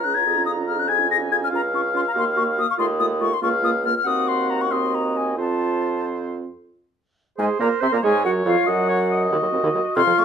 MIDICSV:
0, 0, Header, 1, 6, 480
1, 0, Start_track
1, 0, Tempo, 422238
1, 294, Time_signature, 6, 3, 24, 8
1, 4614, Tempo, 445434
1, 7494, Tempo, 431344
1, 11407, End_track
2, 0, Start_track
2, 0, Title_t, "Flute"
2, 0, Program_c, 0, 73
2, 44, Note_on_c, 0, 90, 90
2, 166, Note_on_c, 0, 92, 90
2, 183, Note_off_c, 0, 90, 0
2, 515, Note_off_c, 0, 92, 0
2, 521, Note_on_c, 0, 87, 92
2, 590, Note_off_c, 0, 87, 0
2, 770, Note_on_c, 0, 89, 82
2, 903, Note_on_c, 0, 90, 90
2, 920, Note_off_c, 0, 89, 0
2, 1005, Note_on_c, 0, 92, 102
2, 1022, Note_off_c, 0, 90, 0
2, 1245, Note_off_c, 0, 92, 0
2, 1263, Note_on_c, 0, 94, 94
2, 1331, Note_off_c, 0, 94, 0
2, 1499, Note_on_c, 0, 92, 99
2, 1551, Note_off_c, 0, 92, 0
2, 1637, Note_on_c, 0, 89, 88
2, 1685, Note_off_c, 0, 89, 0
2, 1764, Note_on_c, 0, 82, 102
2, 1832, Note_off_c, 0, 82, 0
2, 1989, Note_on_c, 0, 85, 94
2, 2057, Note_off_c, 0, 85, 0
2, 2234, Note_on_c, 0, 84, 98
2, 2283, Note_off_c, 0, 84, 0
2, 2362, Note_on_c, 0, 82, 89
2, 2409, Note_off_c, 0, 82, 0
2, 2486, Note_on_c, 0, 84, 102
2, 2554, Note_off_c, 0, 84, 0
2, 2696, Note_on_c, 0, 85, 96
2, 2764, Note_off_c, 0, 85, 0
2, 2945, Note_on_c, 0, 87, 103
2, 3053, Note_off_c, 0, 87, 0
2, 3076, Note_on_c, 0, 85, 95
2, 3123, Note_off_c, 0, 85, 0
2, 3174, Note_on_c, 0, 84, 108
2, 3242, Note_off_c, 0, 84, 0
2, 3408, Note_on_c, 0, 87, 105
2, 3476, Note_off_c, 0, 87, 0
2, 3647, Note_on_c, 0, 85, 104
2, 3792, Note_on_c, 0, 84, 92
2, 3809, Note_off_c, 0, 85, 0
2, 3891, Note_off_c, 0, 84, 0
2, 3898, Note_on_c, 0, 85, 102
2, 3966, Note_off_c, 0, 85, 0
2, 4140, Note_on_c, 0, 87, 94
2, 4209, Note_off_c, 0, 87, 0
2, 4372, Note_on_c, 0, 89, 101
2, 4490, Note_off_c, 0, 89, 0
2, 4519, Note_on_c, 0, 89, 93
2, 4626, Note_on_c, 0, 87, 114
2, 4642, Note_off_c, 0, 89, 0
2, 4853, Note_on_c, 0, 84, 101
2, 4869, Note_off_c, 0, 87, 0
2, 5090, Note_on_c, 0, 82, 90
2, 5106, Note_off_c, 0, 84, 0
2, 5213, Note_on_c, 0, 85, 88
2, 5229, Note_off_c, 0, 82, 0
2, 5317, Note_on_c, 0, 84, 81
2, 5333, Note_off_c, 0, 85, 0
2, 5572, Note_on_c, 0, 82, 85
2, 5589, Note_off_c, 0, 84, 0
2, 5810, Note_on_c, 0, 80, 87
2, 5826, Note_off_c, 0, 82, 0
2, 6044, Note_off_c, 0, 80, 0
2, 6057, Note_on_c, 0, 81, 85
2, 6764, Note_off_c, 0, 81, 0
2, 8225, Note_on_c, 0, 80, 100
2, 8291, Note_off_c, 0, 80, 0
2, 8482, Note_on_c, 0, 82, 99
2, 8549, Note_off_c, 0, 82, 0
2, 8707, Note_on_c, 0, 84, 104
2, 8824, Note_off_c, 0, 84, 0
2, 8851, Note_on_c, 0, 82, 95
2, 8943, Note_off_c, 0, 82, 0
2, 8950, Note_on_c, 0, 80, 113
2, 9180, Note_off_c, 0, 80, 0
2, 9185, Note_on_c, 0, 78, 100
2, 9252, Note_off_c, 0, 78, 0
2, 9424, Note_on_c, 0, 77, 99
2, 9670, Note_on_c, 0, 78, 103
2, 9687, Note_off_c, 0, 77, 0
2, 10386, Note_off_c, 0, 78, 0
2, 11088, Note_on_c, 0, 84, 116
2, 11344, Note_on_c, 0, 85, 120
2, 11360, Note_off_c, 0, 84, 0
2, 11407, Note_off_c, 0, 85, 0
2, 11407, End_track
3, 0, Start_track
3, 0, Title_t, "Oboe"
3, 0, Program_c, 1, 68
3, 0, Note_on_c, 1, 82, 84
3, 1004, Note_on_c, 1, 80, 69
3, 1021, Note_off_c, 1, 82, 0
3, 1698, Note_off_c, 1, 80, 0
3, 1705, Note_on_c, 1, 77, 91
3, 3125, Note_off_c, 1, 77, 0
3, 3169, Note_on_c, 1, 75, 88
3, 3702, Note_off_c, 1, 75, 0
3, 3895, Note_on_c, 1, 77, 85
3, 4352, Note_off_c, 1, 77, 0
3, 4597, Note_on_c, 1, 78, 89
3, 5326, Note_on_c, 1, 75, 80
3, 5342, Note_off_c, 1, 78, 0
3, 6033, Note_off_c, 1, 75, 0
3, 6039, Note_on_c, 1, 72, 71
3, 7111, Note_off_c, 1, 72, 0
3, 8216, Note_on_c, 1, 72, 79
3, 8940, Note_on_c, 1, 73, 87
3, 8957, Note_off_c, 1, 72, 0
3, 9642, Note_off_c, 1, 73, 0
3, 9649, Note_on_c, 1, 75, 94
3, 9887, Note_off_c, 1, 75, 0
3, 9894, Note_on_c, 1, 73, 72
3, 10004, Note_off_c, 1, 73, 0
3, 10145, Note_on_c, 1, 75, 98
3, 11078, Note_off_c, 1, 75, 0
3, 11089, Note_on_c, 1, 77, 96
3, 11407, Note_off_c, 1, 77, 0
3, 11407, End_track
4, 0, Start_track
4, 0, Title_t, "Clarinet"
4, 0, Program_c, 2, 71
4, 68, Note_on_c, 2, 68, 54
4, 185, Note_on_c, 2, 73, 58
4, 202, Note_off_c, 2, 68, 0
4, 296, Note_off_c, 2, 73, 0
4, 303, Note_on_c, 2, 68, 63
4, 422, Note_on_c, 2, 65, 57
4, 439, Note_off_c, 2, 68, 0
4, 542, Note_on_c, 2, 68, 59
4, 559, Note_off_c, 2, 65, 0
4, 655, Note_on_c, 2, 65, 56
4, 672, Note_off_c, 2, 68, 0
4, 773, Note_off_c, 2, 65, 0
4, 786, Note_on_c, 2, 68, 61
4, 895, Note_on_c, 2, 65, 55
4, 913, Note_off_c, 2, 68, 0
4, 1009, Note_on_c, 2, 68, 62
4, 1026, Note_off_c, 2, 65, 0
4, 1134, Note_on_c, 2, 65, 58
4, 1151, Note_off_c, 2, 68, 0
4, 1245, Note_off_c, 2, 65, 0
4, 1252, Note_on_c, 2, 68, 62
4, 1375, Note_on_c, 2, 65, 63
4, 1392, Note_off_c, 2, 68, 0
4, 1485, Note_on_c, 2, 68, 62
4, 1502, Note_off_c, 2, 65, 0
4, 1609, Note_on_c, 2, 65, 62
4, 1626, Note_off_c, 2, 68, 0
4, 1717, Note_off_c, 2, 65, 0
4, 1724, Note_on_c, 2, 65, 76
4, 1834, Note_off_c, 2, 65, 0
4, 1968, Note_on_c, 2, 65, 65
4, 2077, Note_off_c, 2, 65, 0
4, 2195, Note_on_c, 2, 65, 68
4, 2307, Note_off_c, 2, 65, 0
4, 2441, Note_on_c, 2, 66, 71
4, 2550, Note_off_c, 2, 66, 0
4, 2680, Note_on_c, 2, 66, 68
4, 2789, Note_off_c, 2, 66, 0
4, 2928, Note_on_c, 2, 66, 65
4, 3036, Note_off_c, 2, 66, 0
4, 3158, Note_on_c, 2, 65, 75
4, 3269, Note_off_c, 2, 65, 0
4, 3397, Note_on_c, 2, 65, 68
4, 3508, Note_off_c, 2, 65, 0
4, 3633, Note_on_c, 2, 65, 71
4, 3745, Note_off_c, 2, 65, 0
4, 3884, Note_on_c, 2, 65, 73
4, 3994, Note_off_c, 2, 65, 0
4, 4122, Note_on_c, 2, 65, 68
4, 4232, Note_off_c, 2, 65, 0
4, 4371, Note_on_c, 2, 65, 63
4, 4480, Note_off_c, 2, 65, 0
4, 4620, Note_on_c, 2, 66, 79
4, 5281, Note_off_c, 2, 66, 0
4, 5321, Note_on_c, 2, 66, 74
4, 6024, Note_off_c, 2, 66, 0
4, 6032, Note_on_c, 2, 65, 77
4, 7227, Note_off_c, 2, 65, 0
4, 8212, Note_on_c, 2, 68, 94
4, 8443, Note_off_c, 2, 68, 0
4, 8461, Note_on_c, 2, 70, 99
4, 8693, Note_on_c, 2, 72, 91
4, 8709, Note_off_c, 2, 70, 0
4, 8810, Note_off_c, 2, 72, 0
4, 8817, Note_on_c, 2, 70, 94
4, 8873, Note_off_c, 2, 70, 0
4, 8951, Note_on_c, 2, 68, 103
4, 9181, Note_off_c, 2, 68, 0
4, 9188, Note_on_c, 2, 66, 92
4, 9294, Note_off_c, 2, 66, 0
4, 9407, Note_on_c, 2, 65, 95
4, 9650, Note_on_c, 2, 66, 92
4, 9667, Note_off_c, 2, 65, 0
4, 10370, Note_off_c, 2, 66, 0
4, 10376, Note_on_c, 2, 66, 91
4, 11093, Note_on_c, 2, 65, 98
4, 11110, Note_off_c, 2, 66, 0
4, 11407, Note_off_c, 2, 65, 0
4, 11407, End_track
5, 0, Start_track
5, 0, Title_t, "French horn"
5, 0, Program_c, 3, 60
5, 65, Note_on_c, 3, 61, 54
5, 180, Note_on_c, 3, 65, 53
5, 197, Note_off_c, 3, 61, 0
5, 297, Note_off_c, 3, 65, 0
5, 307, Note_on_c, 3, 65, 60
5, 423, Note_on_c, 3, 61, 60
5, 440, Note_off_c, 3, 65, 0
5, 545, Note_on_c, 3, 65, 59
5, 562, Note_off_c, 3, 61, 0
5, 659, Note_on_c, 3, 61, 54
5, 676, Note_off_c, 3, 65, 0
5, 772, Note_off_c, 3, 61, 0
5, 779, Note_on_c, 3, 65, 59
5, 891, Note_on_c, 3, 61, 56
5, 908, Note_off_c, 3, 65, 0
5, 1018, Note_on_c, 3, 65, 66
5, 1035, Note_off_c, 3, 61, 0
5, 1139, Note_on_c, 3, 61, 57
5, 1156, Note_off_c, 3, 65, 0
5, 1245, Note_off_c, 3, 61, 0
5, 1252, Note_on_c, 3, 65, 63
5, 1372, Note_on_c, 3, 61, 56
5, 1389, Note_off_c, 3, 65, 0
5, 1495, Note_on_c, 3, 65, 58
5, 1512, Note_off_c, 3, 61, 0
5, 1607, Note_on_c, 3, 61, 61
5, 1624, Note_off_c, 3, 65, 0
5, 1717, Note_off_c, 3, 61, 0
5, 1724, Note_on_c, 3, 61, 70
5, 1834, Note_off_c, 3, 61, 0
5, 1972, Note_on_c, 3, 61, 62
5, 2080, Note_off_c, 3, 61, 0
5, 2207, Note_on_c, 3, 61, 66
5, 2316, Note_off_c, 3, 61, 0
5, 2456, Note_on_c, 3, 58, 69
5, 2561, Note_off_c, 3, 58, 0
5, 2698, Note_on_c, 3, 58, 64
5, 2802, Note_off_c, 3, 58, 0
5, 2928, Note_on_c, 3, 58, 68
5, 3036, Note_off_c, 3, 58, 0
5, 3163, Note_on_c, 3, 57, 71
5, 3273, Note_off_c, 3, 57, 0
5, 3413, Note_on_c, 3, 57, 71
5, 3520, Note_off_c, 3, 57, 0
5, 3651, Note_on_c, 3, 57, 68
5, 3758, Note_off_c, 3, 57, 0
5, 3886, Note_on_c, 3, 58, 73
5, 3995, Note_off_c, 3, 58, 0
5, 4117, Note_on_c, 3, 58, 70
5, 4228, Note_off_c, 3, 58, 0
5, 4370, Note_on_c, 3, 58, 68
5, 4479, Note_off_c, 3, 58, 0
5, 4607, Note_on_c, 3, 60, 77
5, 5274, Note_off_c, 3, 60, 0
5, 5305, Note_on_c, 3, 60, 75
5, 6015, Note_off_c, 3, 60, 0
5, 6032, Note_on_c, 3, 60, 70
5, 7227, Note_off_c, 3, 60, 0
5, 8219, Note_on_c, 3, 56, 94
5, 8330, Note_off_c, 3, 56, 0
5, 8456, Note_on_c, 3, 58, 91
5, 8567, Note_off_c, 3, 58, 0
5, 8702, Note_on_c, 3, 60, 95
5, 8818, Note_on_c, 3, 58, 90
5, 8835, Note_off_c, 3, 60, 0
5, 8932, Note_off_c, 3, 58, 0
5, 8939, Note_on_c, 3, 56, 97
5, 9047, Note_off_c, 3, 56, 0
5, 9179, Note_on_c, 3, 54, 89
5, 9409, Note_off_c, 3, 54, 0
5, 9416, Note_on_c, 3, 53, 93
5, 9524, Note_off_c, 3, 53, 0
5, 9646, Note_on_c, 3, 54, 97
5, 10354, Note_off_c, 3, 54, 0
5, 10361, Note_on_c, 3, 51, 89
5, 10419, Note_off_c, 3, 51, 0
5, 10486, Note_on_c, 3, 54, 64
5, 10542, Note_off_c, 3, 54, 0
5, 10597, Note_on_c, 3, 60, 68
5, 10655, Note_off_c, 3, 60, 0
5, 10724, Note_on_c, 3, 51, 100
5, 10781, Note_off_c, 3, 51, 0
5, 10843, Note_on_c, 3, 54, 72
5, 10900, Note_off_c, 3, 54, 0
5, 11092, Note_on_c, 3, 48, 96
5, 11146, Note_off_c, 3, 48, 0
5, 11207, Note_on_c, 3, 53, 83
5, 11262, Note_off_c, 3, 53, 0
5, 11327, Note_on_c, 3, 57, 77
5, 11382, Note_off_c, 3, 57, 0
5, 11407, End_track
6, 0, Start_track
6, 0, Title_t, "Bassoon"
6, 0, Program_c, 4, 70
6, 0, Note_on_c, 4, 37, 66
6, 267, Note_off_c, 4, 37, 0
6, 299, Note_on_c, 4, 41, 74
6, 1702, Note_off_c, 4, 41, 0
6, 1732, Note_on_c, 4, 37, 83
6, 2368, Note_off_c, 4, 37, 0
6, 2451, Note_on_c, 4, 39, 81
6, 2976, Note_off_c, 4, 39, 0
6, 3165, Note_on_c, 4, 39, 86
6, 3804, Note_off_c, 4, 39, 0
6, 3888, Note_on_c, 4, 37, 84
6, 4527, Note_off_c, 4, 37, 0
6, 4612, Note_on_c, 4, 39, 83
6, 6036, Note_on_c, 4, 41, 69
6, 6052, Note_off_c, 4, 39, 0
6, 7253, Note_off_c, 4, 41, 0
6, 8226, Note_on_c, 4, 44, 95
6, 8335, Note_off_c, 4, 44, 0
6, 8461, Note_on_c, 4, 46, 93
6, 8571, Note_off_c, 4, 46, 0
6, 8709, Note_on_c, 4, 48, 99
6, 8762, Note_off_c, 4, 48, 0
6, 8828, Note_on_c, 4, 46, 93
6, 8881, Note_off_c, 4, 46, 0
6, 8947, Note_on_c, 4, 44, 102
6, 9181, Note_on_c, 4, 42, 91
6, 9198, Note_off_c, 4, 44, 0
6, 9408, Note_off_c, 4, 42, 0
6, 9415, Note_on_c, 4, 41, 90
6, 9523, Note_off_c, 4, 41, 0
6, 9651, Note_on_c, 4, 42, 94
6, 10362, Note_off_c, 4, 42, 0
6, 10378, Note_on_c, 4, 39, 98
6, 10432, Note_off_c, 4, 39, 0
6, 10493, Note_on_c, 4, 39, 70
6, 10548, Note_off_c, 4, 39, 0
6, 10612, Note_on_c, 4, 39, 70
6, 10667, Note_off_c, 4, 39, 0
6, 10725, Note_on_c, 4, 39, 106
6, 10781, Note_off_c, 4, 39, 0
6, 10848, Note_on_c, 4, 39, 73
6, 10904, Note_off_c, 4, 39, 0
6, 11086, Note_on_c, 4, 41, 105
6, 11142, Note_off_c, 4, 41, 0
6, 11203, Note_on_c, 4, 41, 72
6, 11260, Note_off_c, 4, 41, 0
6, 11324, Note_on_c, 4, 41, 75
6, 11380, Note_off_c, 4, 41, 0
6, 11407, End_track
0, 0, End_of_file